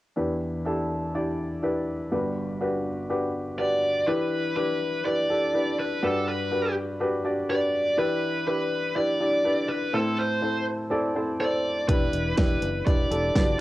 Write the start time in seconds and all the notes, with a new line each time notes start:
0.16 E2 E3 D4 E4 G4 B4
0.65 D4 E4 G4 A4
1.14 D4 E4 G4 D5
1.62 D4 E4 G4 B4
2.11 G1 G2 D4 F#4 G4 B4
2.60 D4 F#4 G4 B4
3.09 D4 F#4 G4 B4
3.58 D4 F#4 G4 B4 D5
4.07 E3 D4 E4 G4 B4
4.56 D4 E4 G4 B4
5.04 D4 E4 G4 B4 D5
5.29 D4 E4 G4 A4
5.54 D4 E4 G4 B4
5.79 B4
6.02 G2 D4 F#4 G4 A4 B4
6.28 B4
6.51 D4 F#4 G4 B4
7.00 D4 F#4 G4 B4
7.24 D4 F#4 G4 D5
7.49 D4 F#4 G4 B4 D5
7.97 E3 D4 E4 G4 B4
8.46 D4 E4 G4 B4
8.95 D4 E4 G4 B4 D5
9.20 D4 E4 G4 D5
9.44 D4 E4 G4 B4
9.69 B4
9.93 A2 C4 E4 A4 C5
10.19 C5
10.42 C4 E4 A4 C5
10.90 C4 E4 A4 D5
11.15 C4 E4 A4 C5
11.40 C4 E4 A4 C5 D5
11.88 E1 E3 D4 E4 G4 B4, kick, closed hi-hat
12.13 E1, closed hi-hat
12.37 E1 D4 E4 G4 B4, kick, snare, closed hi-hat
12.62 F#1, closed hi-hat
12.86 E1 D4 E4 G4 B4 D5, kick, closed hi-hat
13.10 E1 D4 E4 G4 A4, closed hi-hat
13.34 F#1 D4 E4 F#4 B4, kick, snare, closed hi-hat
13.41 G4